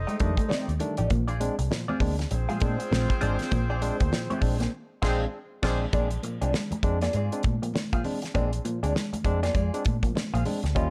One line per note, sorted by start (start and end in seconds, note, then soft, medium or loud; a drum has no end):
0.00 0.76 D#4 medium
0.00 0.77 A4 medium
0.00 0.77 C5 medium
0.00 0.76 D#5 loud
0.07 0.18 G#3 medium
0.07 0.18 A3 medium
0.07 0.18 D#4 medium
0.07 0.19 G4 medium
0.07 0.20 D#5 medium
0.07 closed hi-hat soft
0.20 0.34 F2 medium
0.20 0.34 D#3 medium
0.20 0.34 G3 medium
0.20 0.34 A3 medium
0.20 0.34 D4 medium
0.20 muted clean electric guitar stroke soft
0.20 kick loud
0.20 closed hi-hat medium
0.20 muted conga soft
0.20 high conga medium
0.37 0.48 A3 medium
0.37 muted hollow-body jazz guitar stroke soft
0.37 kick loud
0.37 closed hi-hat medium
0.48 0.71 A3 medium
0.48 0.65 C4 medium
0.48 0.72 D#4 medium
0.48 0.72 G4 medium
0.48 0.72 D5 medium
0.48 muted picked electric bass stroke soft
0.48 snare loud
0.48 high conga medium
0.68 0.78 D#2 medium
0.68 muted clean electric guitar stroke soft
0.68 closed hi-hat soft
0.79 0.94 D#3 medium
0.79 0.94 G3 medium
0.79 0.94 A3 medium
0.79 0.95 D4 medium
0.79 muted hollow-body jazz guitar stroke soft
0.79 closed hi-hat medium
0.79 muted conga soft
0.79 low conga medium
0.97 1.08 A1 loud
0.97 1.09 F3 medium
0.97 1.03 A3 soft
0.97 1.09 A3 soft
0.97 1.03 D4 soft
0.97 1.10 D#4 medium
0.97 1.11 G4 medium
0.97 1.10 D5 medium
0.97 closed hi-hat medium
1.10 1.48 A#1 loud
1.10 1.25 A#2 medium
1.10 1.25 F3 medium
1.10 1.26 A#3 medium
1.10 muted hollow-body jazz guitar stroke soft
1.10 kick loud
1.10 closed hi-hat medium
1.10 muted conga soft
1.10 low conga medium
1.28 1.34 C4 soft
1.28 1.39 C4 medium
1.28 1.34 D4 soft
1.28 1.40 F4 medium
1.28 1.40 G#4 medium
1.28 1.40 D5 medium
1.28 muted clean electric guitar stroke soft
1.28 closed hi-hat soft
1.40 1.55 G#3 medium
1.40 1.55 C4 medium
1.40 1.56 C4 medium
1.40 1.55 D4 medium
1.40 muted hollow-body jazz guitar stroke soft
1.40 closed hi-hat medium
1.40 muted conga soft
1.59 1.68 C2 medium
1.59 muted hollow-body jazz guitar stroke medium
1.59 closed hi-hat medium
1.71 1.85 A#2 medium
1.71 1.85 F3 medium
1.71 muted hollow-body jazz guitar stroke soft
1.71 muted clean electric guitar stroke soft
1.71 snare loud
1.71 muted conga soft
1.88 1.99 C4 medium
1.88 2.00 F4 medium
1.88 2.00 G#4 medium
1.88 2.00 D5 medium
1.88 high conga medium
1.88 low conga medium
2.00 2.24 D2 medium
2.00 2.15 G#3 medium
2.00 2.16 A#3 medium
2.00 2.15 C4 medium
2.00 2.15 D4 medium
2.00 kick medium
2.00 open hi-hat medium
2.19 2.24 C4 soft
2.19 2.24 D4 soft
2.19 muted hollow-body jazz guitar stroke soft
2.19 snare soft
2.19 closed hi-hat medium
2.31 2.46 A#1 loud
2.31 2.39 C4 soft
2.31 4.69 C4 medium
2.31 2.39 D4 soft
2.31 4.69 F4 medium
2.31 4.69 G#4 medium
2.31 4.69 C5 loud
2.31 muted hollow-body jazz guitar stroke soft
2.31 muted clean electric guitar stroke soft
2.31 closed hi-hat medium
2.31 muted conga soft
2.49 2.59 A#2 medium
2.49 2.59 F3 medium
2.49 2.59 G#3 medium
2.49 2.60 C4 medium
2.49 2.61 F4 medium
2.49 2.61 G#4 medium
2.49 2.62 F5 medium
2.49 closed hi-hat soft
2.60 2.76 A#2 medium
2.60 2.76 G#3 medium
2.60 2.77 A#3 medium
2.60 2.76 C4 medium
2.60 2.76 D4 medium
2.60 muted hollow-body jazz guitar stroke soft
2.60 kick loud
2.60 closed hi-hat medium
2.60 high conga medium
2.79 muted hollow-body jazz guitar stroke medium
2.79 closed hi-hat medium
2.91 3.06 A#1 loud
2.91 3.06 A#2 medium
2.91 3.06 F3 medium
2.91 3.07 C4 medium
2.91 snare loud
2.91 high conga medium
3.09 muted hollow-body jazz guitar stroke soft
3.09 kick loud
3.09 closed hi-hat soft
3.21 3.36 G#1 medium
3.21 3.36 G#3 medium
3.21 3.43 C4 medium
3.21 3.36 C4 medium
3.21 3.36 D4 medium
3.21 3.39 F4 medium
3.21 3.38 G#4 medium
3.21 3.38 D5 medium
3.21 muted clean electric guitar stroke soft
3.21 closed hi-hat medium
3.21 muted conga soft
3.21 low conga medium
3.39 3.50 C4 medium
3.39 3.45 C4 soft
3.39 3.45 D4 soft
3.39 muted hollow-body jazz guitar stroke soft
3.39 snare soft
3.39 closed hi-hat medium
3.51 3.90 A#1 medium
3.51 3.66 A#2 medium
3.51 3.66 F3 medium
3.51 3.67 A#3 loud
3.51 muted hollow-body jazz guitar stroke soft
3.51 kick medium
3.51 closed hi-hat medium
3.51 muted conga soft
3.51 low conga medium
3.70 3.75 C4 soft
3.70 3.81 C4 medium
3.70 3.75 D4 soft
3.70 3.81 F4 medium
3.70 3.82 G#4 medium
3.70 3.82 D5 loud
3.81 3.96 G#3 medium
3.81 3.96 C4 medium
3.81 3.96 D4 medium
3.81 muted clean electric guitar stroke soft
3.81 muted hollow-body jazz guitar stroke medium
3.81 closed hi-hat medium
3.81 muted conga soft
4.00 4.10 D2 medium
4.00 4.10 A#3 medium
4.00 muted hollow-body jazz guitar stroke soft
4.00 kick loud
4.00 closed hi-hat medium
4.12 4.26 A#2 medium
4.12 4.26 F3 medium
4.12 muted hollow-body jazz guitar stroke soft
4.12 snare medium
4.12 muted conga soft
4.30 4.40 C4 medium
4.30 4.41 C4 medium
4.30 4.42 F4 medium
4.30 4.42 G#4 medium
4.30 4.42 D5 medium
4.30 closed hi-hat soft
4.30 high conga medium
4.30 low conga medium
4.41 4.66 A#1 medium
4.41 4.56 G#3 medium
4.41 4.56 C4 medium
4.41 4.56 D4 medium
4.41 kick medium
4.41 open hi-hat medium
4.41 muted conga soft
4.60 4.70 A#3 medium
4.60 4.65 C4 soft
4.60 4.65 D4 soft
4.60 muted hollow-body jazz guitar stroke soft
4.60 snare soft
4.60 closed hi-hat soft
5.02 5.24 A#1 loud
5.02 5.24 G#3 medium
5.02 5.24 C4 loud
5.02 5.19 C4 medium
5.02 5.25 C4 medium
5.02 5.24 D4 medium
5.02 5.25 F4 medium
5.02 5.19 F4 medium
5.02 5.25 G#4 medium
5.02 5.19 G#4 medium
5.02 5.19 C5 loud
5.02 5.24 F5 medium
5.02 kick loud
5.02 snare medium
5.02 crash medium
5.63 5.85 A#1 medium
5.63 5.84 G#3 medium
5.63 5.85 C4 medium
5.63 5.79 C4 medium
5.63 5.85 C4 medium
5.63 5.85 D4 medium
5.63 5.80 F4 medium
5.63 5.85 F4 loud
5.63 5.85 G#4 loud
5.63 5.80 G#4 medium
5.63 5.79 C5 medium
5.63 5.85 D5 medium
5.63 kick loud
5.63 snare loud
5.63 crash medium
5.93 6.17 A#1 medium
5.93 6.07 G#3 medium
5.93 6.08 A#3 medium
5.93 6.15 C4 medium
5.93 6.07 C4 medium
5.93 6.07 D4 loud
5.93 6.11 F4 medium
5.93 6.11 G#4 medium
5.93 6.10 D5 loud
5.93 kick loud
5.93 closed hi-hat medium
5.93 low conga medium
6.11 muted clean electric guitar stroke soft
6.11 muted hollow-body jazz guitar stroke soft
6.11 closed hi-hat medium
6.23 6.38 A#2 medium
6.23 6.38 F3 medium
6.23 6.39 A#3 medium
6.23 muted hollow-body jazz guitar stroke soft
6.23 closed hi-hat medium
6.23 muted conga soft
6.41 6.51 C2 medium
6.41 6.51 G#3 medium
6.41 6.51 C4 medium
6.41 6.53 C4 soft
6.41 6.51 D4 medium
6.41 6.53 F4 medium
6.41 6.54 G#4 medium
6.41 6.53 D5 medium
6.41 closed hi-hat medium
6.53 6.69 G#3 medium
6.53 muted hollow-body jazz guitar stroke soft
6.53 snare loud
6.53 muted conga soft
6.71 muted hollow-body jazz guitar stroke soft
6.71 muted picked electric bass stroke soft
6.71 closed hi-hat medium
6.71 high conga medium
6.71 low conga medium
6.83 7.07 F2 medium
6.83 6.98 G#3 medium
6.83 6.98 C4 medium
6.83 6.98 D4 medium
6.83 muted clean electric guitar stroke soft
6.83 kick medium
6.83 closed hi-hat medium
6.83 muted conga soft
7.01 7.12 A#3 medium
7.01 7.14 C4 medium
7.01 7.14 F4 medium
7.01 7.15 G#4 medium
7.01 7.15 D5 medium
7.01 snare soft
7.01 closed hi-hat medium
7.13 7.28 G#2 loud
7.13 7.29 G#3 medium
7.13 7.43 C4 medium
7.13 7.43 F4 medium
7.13 7.43 G#4 medium
7.13 7.43 D5 medium
7.13 closed hi-hat medium
7.13 muted conga soft
7.32 7.42 G#3 medium
7.32 7.42 C4 medium
7.32 7.42 D4 medium
7.32 closed hi-hat medium
7.43 7.58 A#2 medium
7.43 muted clean electric guitar stroke soft
7.43 muted hollow-body jazz guitar stroke soft
7.43 kick loud
7.43 closed hi-hat medium
7.43 muted conga soft
7.43 high conga medium
7.62 7.72 A#2 soft
7.62 7.72 F3 soft
7.62 7.73 A#3 medium
7.62 muted hollow-body jazz guitar stroke soft
7.62 closed hi-hat medium
7.74 7.82 C4 soft
7.74 7.82 D4 soft
7.74 muted clean electric guitar stroke soft
7.74 muted hollow-body jazz guitar stroke soft
7.74 snare loud
7.74 high conga medium
7.93 8.02 A#2 medium
7.93 8.02 F3 medium
7.93 8.03 A#3 medium
7.93 8.03 C4 medium
7.93 8.04 F4 medium
7.93 8.04 G#4 medium
7.93 8.05 F5 medium
7.93 kick loud
7.93 closed hi-hat soft
8.04 8.19 G#3 medium
8.04 8.20 C4 medium
8.04 8.19 C4 medium
8.04 8.19 D4 medium
8.04 open hi-hat medium
8.04 low conga medium
8.22 muted hollow-body jazz guitar stroke soft
8.22 snare soft
8.22 closed hi-hat medium
8.34 8.58 A#1 medium
8.34 8.48 G#3 medium
8.34 8.50 A#3 loud
8.34 8.49 C4 medium
8.34 8.57 C4 medium
8.34 8.49 D4 medium
8.34 8.52 F4 medium
8.34 8.52 G#4 medium
8.34 8.52 D5 medium
8.34 kick medium
8.34 closed hi-hat medium
8.34 muted conga soft
8.34 low conga medium
8.53 muted hollow-body jazz guitar stroke soft
8.53 muted clean electric guitar stroke soft
8.53 closed hi-hat medium
8.65 8.79 A#2 medium
8.65 8.79 F3 medium
8.65 8.80 A#3 medium
8.65 muted hollow-body jazz guitar stroke soft
8.65 closed hi-hat medium
8.65 muted conga soft
8.83 8.92 D2 medium
8.83 8.92 G#3 medium
8.83 8.92 C4 medium
8.83 8.94 C4 medium
8.83 8.93 D4 medium
8.83 8.94 F4 soft
8.83 8.95 G#4 medium
8.83 8.95 D5 medium
8.83 closed hi-hat medium
8.95 9.10 G#3 medium
8.95 snare loud
9.13 muted hollow-body jazz guitar stroke soft
9.13 muted picked electric bass stroke soft
9.13 closed hi-hat medium
9.13 high conga medium
9.13 low conga medium
9.25 9.48 F2 medium
9.25 9.39 G#3 medium
9.25 9.39 C4 medium
9.25 9.39 D4 loud
9.25 muted clean electric guitar stroke soft
9.25 kick medium
9.25 closed hi-hat medium
9.25 muted conga soft
9.43 9.53 A#3 medium
9.43 9.54 C4 medium
9.43 9.54 F4 medium
9.43 9.55 G#4 medium
9.43 9.55 D5 medium
9.43 snare soft
9.43 closed hi-hat medium
9.55 9.69 F2 medium
9.55 9.70 G#3 medium
9.55 9.83 C4 medium
9.55 9.84 F4 medium
9.55 9.84 G#4 medium
9.55 9.84 D5 medium
9.55 kick medium
9.55 closed hi-hat medium
9.74 9.83 G#3 medium
9.74 9.83 C4 medium
9.74 9.83 D4 medium
9.74 closed hi-hat medium
9.85 10.00 A#2 medium
9.85 muted clean electric guitar stroke soft
9.85 muted hollow-body jazz guitar stroke soft
9.85 kick loud
9.85 closed hi-hat medium
9.85 high conga medium
10.03 10.13 A#2 soft
10.03 10.13 F3 soft
10.03 10.13 A#3 medium
10.03 muted hollow-body jazz guitar stroke soft
10.03 kick medium
10.03 closed hi-hat medium
10.15 10.23 C4 soft
10.15 10.23 D4 soft
10.15 muted clean electric guitar stroke medium
10.15 muted picked electric bass stroke soft
10.15 muted hollow-body jazz guitar stroke soft
10.15 snare loud
10.15 muted conga soft
10.15 high conga medium
10.33 10.43 A#1 medium
10.33 10.43 A#2 medium
10.33 10.43 F3 medium
10.33 10.44 A#3 medium
10.33 10.44 C4 medium
10.33 10.44 F4 medium
10.33 10.44 G#4 medium
10.33 10.45 F5 medium
10.33 closed hi-hat soft
10.45 10.60 G#3 medium
10.45 10.61 G#3 medium
10.45 10.60 C4 medium
10.45 10.60 D4 medium
10.45 muted hollow-body jazz guitar stroke soft
10.45 open hi-hat medium
10.45 muted conga soft
10.45 low conga medium
10.63 10.76 D2 medium
10.63 muted hollow-body jazz guitar stroke soft
10.63 snare soft
10.63 closed hi-hat soft
10.75 10.90 D#2 loud
10.75 10.90 G3 medium
10.75 10.90 A#3 loud
10.75 10.90 C#4 medium
10.75 10.90 F4 medium
10.75 10.90 F4 loud
10.75 10.90 G4 medium
10.75 10.90 D#5 medium
10.75 kick loud
10.75 closed hi-hat medium
10.75 muted conga soft
10.75 low conga medium